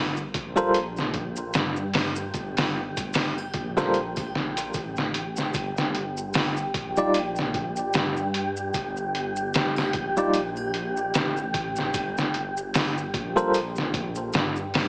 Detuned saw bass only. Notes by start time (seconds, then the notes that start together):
Already playing: G1
0.35 A#1
1.55 G2
2.34 G1
3.54 A#1
4.74 A1
5.55 G1
6.75 A#1
7.94 G2
8.75 G1
9.94 A#1
11.15 A1
11.94 G1
13.14 A#1
14.34 G2